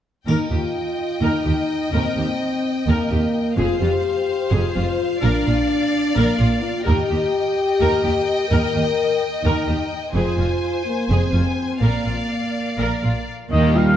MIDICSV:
0, 0, Header, 1, 11, 480
1, 0, Start_track
1, 0, Tempo, 470219
1, 290, Time_signature, 7, 3, 24, 8
1, 11327, Tempo, 481928
1, 14187, End_track
2, 0, Start_track
2, 0, Title_t, "Violin section"
2, 0, Program_c, 0, 48
2, 284, Note_on_c, 0, 79, 41
2, 3622, Note_off_c, 0, 79, 0
2, 3659, Note_on_c, 0, 77, 48
2, 6967, Note_off_c, 0, 77, 0
2, 7017, Note_on_c, 0, 79, 54
2, 10325, Note_off_c, 0, 79, 0
2, 10361, Note_on_c, 0, 80, 46
2, 12012, Note_off_c, 0, 80, 0
2, 12054, Note_on_c, 0, 77, 42
2, 13535, Note_off_c, 0, 77, 0
2, 13746, Note_on_c, 0, 67, 50
2, 13960, Note_off_c, 0, 67, 0
2, 13976, Note_on_c, 0, 63, 44
2, 14187, Note_off_c, 0, 63, 0
2, 14187, End_track
3, 0, Start_track
3, 0, Title_t, "Trumpet section"
3, 0, Program_c, 1, 61
3, 13733, Note_on_c, 1, 75, 81
3, 13953, Note_off_c, 1, 75, 0
3, 13975, Note_on_c, 1, 77, 71
3, 14187, Note_off_c, 1, 77, 0
3, 14187, End_track
4, 0, Start_track
4, 0, Title_t, "Violin section"
4, 0, Program_c, 2, 48
4, 287, Note_on_c, 2, 75, 38
4, 3623, Note_off_c, 2, 75, 0
4, 3660, Note_on_c, 2, 72, 46
4, 5305, Note_off_c, 2, 72, 0
4, 5345, Note_on_c, 2, 74, 51
4, 7013, Note_off_c, 2, 74, 0
4, 7014, Note_on_c, 2, 75, 54
4, 10323, Note_off_c, 2, 75, 0
4, 10357, Note_on_c, 2, 72, 46
4, 12010, Note_off_c, 2, 72, 0
4, 12056, Note_on_c, 2, 74, 38
4, 13506, Note_off_c, 2, 74, 0
4, 13742, Note_on_c, 2, 58, 44
4, 13958, Note_off_c, 2, 58, 0
4, 13971, Note_on_c, 2, 63, 40
4, 14187, Note_off_c, 2, 63, 0
4, 14187, End_track
5, 0, Start_track
5, 0, Title_t, "Viola section"
5, 0, Program_c, 3, 48
5, 282, Note_on_c, 3, 70, 41
5, 511, Note_off_c, 3, 70, 0
5, 526, Note_on_c, 3, 67, 32
5, 608, Note_off_c, 3, 67, 0
5, 1244, Note_on_c, 3, 70, 50
5, 1473, Note_off_c, 3, 70, 0
5, 1484, Note_on_c, 3, 67, 33
5, 1566, Note_off_c, 3, 67, 0
5, 1964, Note_on_c, 3, 70, 45
5, 2195, Note_off_c, 3, 70, 0
5, 2211, Note_on_c, 3, 67, 36
5, 2292, Note_off_c, 3, 67, 0
5, 2946, Note_on_c, 3, 70, 55
5, 3169, Note_off_c, 3, 70, 0
5, 3182, Note_on_c, 3, 67, 38
5, 3264, Note_off_c, 3, 67, 0
5, 3653, Note_on_c, 3, 68, 51
5, 3881, Note_off_c, 3, 68, 0
5, 3896, Note_on_c, 3, 65, 37
5, 3977, Note_off_c, 3, 65, 0
5, 4611, Note_on_c, 3, 68, 60
5, 4839, Note_off_c, 3, 68, 0
5, 4862, Note_on_c, 3, 65, 46
5, 4944, Note_off_c, 3, 65, 0
5, 5335, Note_on_c, 3, 70, 60
5, 5561, Note_off_c, 3, 70, 0
5, 5585, Note_on_c, 3, 65, 41
5, 5666, Note_off_c, 3, 65, 0
5, 6288, Note_on_c, 3, 70, 59
5, 6513, Note_off_c, 3, 70, 0
5, 6524, Note_on_c, 3, 65, 43
5, 6606, Note_off_c, 3, 65, 0
5, 6994, Note_on_c, 3, 70, 57
5, 7225, Note_off_c, 3, 70, 0
5, 7252, Note_on_c, 3, 67, 41
5, 7334, Note_off_c, 3, 67, 0
5, 7966, Note_on_c, 3, 70, 64
5, 8189, Note_off_c, 3, 70, 0
5, 8204, Note_on_c, 3, 67, 45
5, 8286, Note_off_c, 3, 67, 0
5, 8682, Note_on_c, 3, 70, 58
5, 8905, Note_off_c, 3, 70, 0
5, 8929, Note_on_c, 3, 67, 41
5, 9011, Note_off_c, 3, 67, 0
5, 9643, Note_on_c, 3, 70, 64
5, 9865, Note_off_c, 3, 70, 0
5, 9880, Note_on_c, 3, 67, 36
5, 9962, Note_off_c, 3, 67, 0
5, 10362, Note_on_c, 3, 68, 47
5, 10586, Note_off_c, 3, 68, 0
5, 10608, Note_on_c, 3, 65, 33
5, 10690, Note_off_c, 3, 65, 0
5, 11333, Note_on_c, 3, 68, 47
5, 11551, Note_off_c, 3, 68, 0
5, 11566, Note_on_c, 3, 65, 37
5, 11645, Note_off_c, 3, 65, 0
5, 12044, Note_on_c, 3, 70, 38
5, 12270, Note_off_c, 3, 70, 0
5, 12291, Note_on_c, 3, 65, 32
5, 12370, Note_off_c, 3, 65, 0
5, 13010, Note_on_c, 3, 70, 53
5, 13235, Note_off_c, 3, 70, 0
5, 13260, Note_on_c, 3, 65, 35
5, 13339, Note_off_c, 3, 65, 0
5, 13736, Note_on_c, 3, 51, 51
5, 13955, Note_off_c, 3, 51, 0
5, 13973, Note_on_c, 3, 55, 44
5, 14187, Note_off_c, 3, 55, 0
5, 14187, End_track
6, 0, Start_track
6, 0, Title_t, "Woodwind section"
6, 0, Program_c, 4, 71
6, 13748, Note_on_c, 4, 70, 71
6, 13749, Note_on_c, 4, 63, 65
6, 13750, Note_on_c, 4, 55, 67
6, 13757, Note_on_c, 4, 79, 65
6, 14187, Note_off_c, 4, 55, 0
6, 14187, Note_off_c, 4, 63, 0
6, 14187, Note_off_c, 4, 70, 0
6, 14187, Note_off_c, 4, 79, 0
6, 14187, End_track
7, 0, Start_track
7, 0, Title_t, "French horn section"
7, 0, Program_c, 5, 60
7, 278, Note_on_c, 5, 63, 53
7, 505, Note_on_c, 5, 65, 51
7, 509, Note_off_c, 5, 63, 0
7, 1243, Note_off_c, 5, 65, 0
7, 1246, Note_on_c, 5, 63, 58
7, 1971, Note_on_c, 5, 60, 62
7, 1972, Note_off_c, 5, 63, 0
7, 2922, Note_off_c, 5, 60, 0
7, 2925, Note_on_c, 5, 58, 53
7, 3648, Note_on_c, 5, 65, 64
7, 3656, Note_off_c, 5, 58, 0
7, 3891, Note_off_c, 5, 65, 0
7, 3898, Note_on_c, 5, 67, 62
7, 4613, Note_on_c, 5, 65, 78
7, 4618, Note_off_c, 5, 67, 0
7, 5335, Note_on_c, 5, 62, 68
7, 5336, Note_off_c, 5, 65, 0
7, 6274, Note_off_c, 5, 62, 0
7, 6282, Note_on_c, 5, 58, 67
7, 6765, Note_off_c, 5, 58, 0
7, 6765, Note_on_c, 5, 65, 74
7, 6996, Note_on_c, 5, 67, 78
7, 7007, Note_off_c, 5, 65, 0
7, 8644, Note_off_c, 5, 67, 0
7, 8662, Note_on_c, 5, 70, 76
7, 9445, Note_off_c, 5, 70, 0
7, 9619, Note_on_c, 5, 63, 65
7, 10101, Note_off_c, 5, 63, 0
7, 10359, Note_on_c, 5, 65, 64
7, 11043, Note_off_c, 5, 65, 0
7, 11084, Note_on_c, 5, 58, 53
7, 11326, Note_off_c, 5, 58, 0
7, 11330, Note_on_c, 5, 60, 54
7, 12029, Note_on_c, 5, 58, 49
7, 12047, Note_off_c, 5, 60, 0
7, 13485, Note_off_c, 5, 58, 0
7, 13733, Note_on_c, 5, 63, 65
7, 13953, Note_off_c, 5, 63, 0
7, 13970, Note_on_c, 5, 65, 60
7, 14187, Note_off_c, 5, 65, 0
7, 14187, End_track
8, 0, Start_track
8, 0, Title_t, "Trombone section"
8, 0, Program_c, 6, 61
8, 13742, Note_on_c, 6, 55, 59
8, 13746, Note_on_c, 6, 46, 55
8, 14187, Note_off_c, 6, 46, 0
8, 14187, Note_off_c, 6, 55, 0
8, 14187, End_track
9, 0, Start_track
9, 0, Title_t, "Cello section"
9, 0, Program_c, 7, 48
9, 273, Note_on_c, 7, 39, 40
9, 355, Note_off_c, 7, 39, 0
9, 523, Note_on_c, 7, 39, 34
9, 605, Note_off_c, 7, 39, 0
9, 1239, Note_on_c, 7, 39, 50
9, 1321, Note_off_c, 7, 39, 0
9, 1479, Note_on_c, 7, 39, 30
9, 1560, Note_off_c, 7, 39, 0
9, 1965, Note_on_c, 7, 39, 48
9, 2047, Note_off_c, 7, 39, 0
9, 2213, Note_on_c, 7, 39, 36
9, 2294, Note_off_c, 7, 39, 0
9, 2935, Note_on_c, 7, 39, 54
9, 3017, Note_off_c, 7, 39, 0
9, 3171, Note_on_c, 7, 39, 39
9, 3253, Note_off_c, 7, 39, 0
9, 3650, Note_on_c, 7, 41, 51
9, 3732, Note_off_c, 7, 41, 0
9, 3894, Note_on_c, 7, 41, 40
9, 3976, Note_off_c, 7, 41, 0
9, 4617, Note_on_c, 7, 41, 62
9, 4699, Note_off_c, 7, 41, 0
9, 4852, Note_on_c, 7, 41, 41
9, 4934, Note_off_c, 7, 41, 0
9, 5335, Note_on_c, 7, 46, 54
9, 5416, Note_off_c, 7, 46, 0
9, 5579, Note_on_c, 7, 46, 38
9, 5661, Note_off_c, 7, 46, 0
9, 6297, Note_on_c, 7, 46, 59
9, 6378, Note_off_c, 7, 46, 0
9, 6534, Note_on_c, 7, 46, 43
9, 6616, Note_off_c, 7, 46, 0
9, 7016, Note_on_c, 7, 39, 56
9, 7098, Note_off_c, 7, 39, 0
9, 7255, Note_on_c, 7, 39, 41
9, 7336, Note_off_c, 7, 39, 0
9, 7967, Note_on_c, 7, 39, 60
9, 8049, Note_off_c, 7, 39, 0
9, 8210, Note_on_c, 7, 39, 44
9, 8291, Note_off_c, 7, 39, 0
9, 8692, Note_on_c, 7, 39, 53
9, 8773, Note_off_c, 7, 39, 0
9, 8923, Note_on_c, 7, 39, 41
9, 9004, Note_off_c, 7, 39, 0
9, 9631, Note_on_c, 7, 39, 57
9, 9712, Note_off_c, 7, 39, 0
9, 9876, Note_on_c, 7, 39, 38
9, 9957, Note_off_c, 7, 39, 0
9, 10357, Note_on_c, 7, 41, 50
9, 10439, Note_off_c, 7, 41, 0
9, 10592, Note_on_c, 7, 41, 37
9, 10673, Note_off_c, 7, 41, 0
9, 11327, Note_on_c, 7, 41, 46
9, 11407, Note_off_c, 7, 41, 0
9, 11561, Note_on_c, 7, 41, 35
9, 11640, Note_off_c, 7, 41, 0
9, 12039, Note_on_c, 7, 46, 40
9, 12118, Note_off_c, 7, 46, 0
9, 12286, Note_on_c, 7, 46, 32
9, 12366, Note_off_c, 7, 46, 0
9, 13005, Note_on_c, 7, 46, 46
9, 13085, Note_off_c, 7, 46, 0
9, 13254, Note_on_c, 7, 46, 32
9, 13334, Note_off_c, 7, 46, 0
9, 13730, Note_on_c, 7, 39, 55
9, 14149, Note_off_c, 7, 39, 0
9, 14187, End_track
10, 0, Start_track
10, 0, Title_t, "Double bass section"
10, 0, Program_c, 8, 48
10, 281, Note_on_c, 8, 39, 47
10, 363, Note_off_c, 8, 39, 0
10, 521, Note_on_c, 8, 39, 33
10, 603, Note_off_c, 8, 39, 0
10, 1246, Note_on_c, 8, 39, 48
10, 1327, Note_off_c, 8, 39, 0
10, 1489, Note_on_c, 8, 39, 34
10, 1571, Note_off_c, 8, 39, 0
10, 1976, Note_on_c, 8, 39, 50
10, 2057, Note_off_c, 8, 39, 0
10, 2203, Note_on_c, 8, 39, 33
10, 2285, Note_off_c, 8, 39, 0
10, 2935, Note_on_c, 8, 39, 53
10, 3017, Note_off_c, 8, 39, 0
10, 3185, Note_on_c, 8, 39, 35
10, 3266, Note_off_c, 8, 39, 0
10, 3663, Note_on_c, 8, 29, 51
10, 3745, Note_off_c, 8, 29, 0
10, 3894, Note_on_c, 8, 29, 34
10, 3976, Note_off_c, 8, 29, 0
10, 4618, Note_on_c, 8, 29, 59
10, 4699, Note_off_c, 8, 29, 0
10, 4858, Note_on_c, 8, 29, 39
10, 4940, Note_off_c, 8, 29, 0
10, 5333, Note_on_c, 8, 34, 58
10, 5414, Note_off_c, 8, 34, 0
10, 5576, Note_on_c, 8, 34, 37
10, 5657, Note_off_c, 8, 34, 0
10, 6296, Note_on_c, 8, 34, 61
10, 6378, Note_off_c, 8, 34, 0
10, 6535, Note_on_c, 8, 34, 39
10, 6617, Note_off_c, 8, 34, 0
10, 7019, Note_on_c, 8, 39, 64
10, 7100, Note_off_c, 8, 39, 0
10, 7259, Note_on_c, 8, 39, 39
10, 7341, Note_off_c, 8, 39, 0
10, 7976, Note_on_c, 8, 39, 60
10, 8057, Note_off_c, 8, 39, 0
10, 8211, Note_on_c, 8, 39, 43
10, 8292, Note_off_c, 8, 39, 0
10, 8689, Note_on_c, 8, 39, 60
10, 8771, Note_off_c, 8, 39, 0
10, 8922, Note_on_c, 8, 39, 38
10, 9004, Note_off_c, 8, 39, 0
10, 9642, Note_on_c, 8, 39, 60
10, 9723, Note_off_c, 8, 39, 0
10, 9881, Note_on_c, 8, 39, 34
10, 9963, Note_off_c, 8, 39, 0
10, 10361, Note_on_c, 8, 29, 55
10, 10443, Note_off_c, 8, 29, 0
10, 10604, Note_on_c, 8, 29, 33
10, 10686, Note_off_c, 8, 29, 0
10, 11329, Note_on_c, 8, 29, 51
10, 11409, Note_off_c, 8, 29, 0
10, 11565, Note_on_c, 8, 29, 34
10, 11644, Note_off_c, 8, 29, 0
10, 12042, Note_on_c, 8, 34, 46
10, 12122, Note_off_c, 8, 34, 0
10, 12284, Note_on_c, 8, 34, 31
10, 12363, Note_off_c, 8, 34, 0
10, 13010, Note_on_c, 8, 34, 43
10, 13089, Note_off_c, 8, 34, 0
10, 13250, Note_on_c, 8, 34, 30
10, 13330, Note_off_c, 8, 34, 0
10, 13728, Note_on_c, 8, 39, 61
10, 14148, Note_off_c, 8, 39, 0
10, 14187, End_track
11, 0, Start_track
11, 0, Title_t, "Drums"
11, 289, Note_on_c, 9, 81, 25
11, 391, Note_off_c, 9, 81, 0
11, 14187, End_track
0, 0, End_of_file